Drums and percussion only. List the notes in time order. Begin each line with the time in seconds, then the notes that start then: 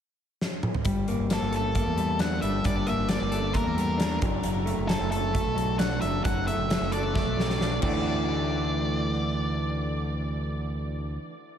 0.41 snare
0.63 mid tom
0.74 floor tom
0.85 kick, closed hi-hat
1.08 closed hi-hat
1.30 snare, closed hi-hat
1.53 closed hi-hat
1.75 kick, closed hi-hat
1.98 closed hi-hat
2.19 snare, closed hi-hat
2.42 closed hi-hat
2.64 kick, closed hi-hat
2.87 closed hi-hat
3.09 snare, closed hi-hat
3.32 closed hi-hat
3.54 kick, closed hi-hat
3.78 closed hi-hat
4.00 snare, closed hi-hat
4.22 kick, closed hi-hat
4.43 closed hi-hat
4.67 closed hi-hat
4.89 snare, closed hi-hat
5.12 closed hi-hat
5.35 kick, closed hi-hat
5.58 closed hi-hat
5.79 snare, closed hi-hat
6.02 closed hi-hat
6.25 kick, closed hi-hat
6.48 closed hi-hat
6.70 snare, closed hi-hat
6.92 closed hi-hat
7.15 kick, snare
7.40 snare
7.50 snare
7.61 snare
7.82 kick, crash